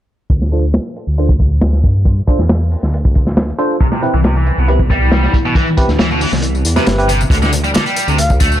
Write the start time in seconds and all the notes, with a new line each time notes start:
0.30 D2, kick, closed hi-hat, tambourine
0.42 snare
0.52 D4 F4 A4 C5, closed hi-hat, tambourine
0.64 tambourine
0.74 snare, closed hi-hat, tambourine
0.86 closed hi-hat
0.96 closed hi-hat, tambourine
1.07 D2, tambourine
1.18 D4 F4 A4 C5, closed hi-hat, tambourine
1.29 kick, tambourine
1.39 kick, closed hi-hat, tambourine
1.52 tambourine
1.61 snare, closed hi-hat, tambourine
1.73 snare
1.84 G2, kick, closed hi-hat, tambourine
1.95 tambourine
2.05 kick, closed hi-hat, tambourine
2.17 tambourine
2.27 D4 F4 A4 C5, kick, closed hi-hat, tambourine
2.39 E2, snare, tambourine
2.49 snare, closed hi-hat, tambourine
2.61 tambourine
2.71 open hi-hat, tambourine
2.83 D2, snare, tambourine
2.93 closed hi-hat, tambourine
3.05 kick, tambourine
3.15 kick, closed hi-hat, tambourine
3.27 snare, tambourine
3.37 snare, closed hi-hat, tambourine
3.49 closed hi-hat, tambourine
3.59 D4 F4 A4 C5, closed hi-hat, tambourine
3.71 tambourine
3.81 C3 E3 G3 B3 E4, kick, closed hi-hat, tambourine
3.92 C3, snare, tambourine
4.02 C4 E4 G4 B4, closed hi-hat, tambourine
4.14 C2 E3, tambourine
4.24 C3, snare, closed hi-hat, tambourine
4.36 E3, closed hi-hat, tambourine
4.46 closed hi-hat, tambourine
4.58 C2 B2, tambourine
4.68 C4 E4 G4 B4, closed hi-hat, tambourine
4.79 kick, tambourine
4.90 G3, kick, closed hi-hat, tambourine
5.02 tambourine
5.12 snare, closed hi-hat, tambourine
5.23 snare, tambourine
5.34 kick, closed hi-hat, tambourine
5.45 B2, tambourine
5.55 E3, kick, closed hi-hat, tambourine
5.67 tambourine
5.77 C4 E4 G4 B4, kick, closed hi-hat, tambourine
5.89 D2, snare, tambourine
5.99 E3, snare, closed hi-hat, tambourine
6.11 B2, tambourine
6.21 E3, open hi-hat, tambourine
6.32 C2, snare, tambourine
6.42 closed hi-hat, tambourine
6.55 tambourine
6.65 E2, closed hi-hat, tambourine
6.76 C3 C4 E4 G4 B4, snare, tambourine
6.87 G1, snare, closed hi-hat, tambourine
6.98 C4 E4 G4 B4, closed hi-hat, tambourine
7.09 C3, closed hi-hat, tambourine
7.21 tambourine
7.30 D2 D3, kick, closed hi-hat, tambourine
7.42 D3, snare, tambourine
7.53 closed hi-hat, tambourine
7.64 G3, tambourine
7.74 D3, snare, closed hi-hat, tambourine
7.86 G3, closed hi-hat, tambourine
7.96 closed hi-hat, tambourine
8.08 D2 C3, tambourine
8.18 F5, closed hi-hat, tambourine
8.30 kick, tambourine
8.40 A3, kick, closed hi-hat, tambourine
8.52 tambourine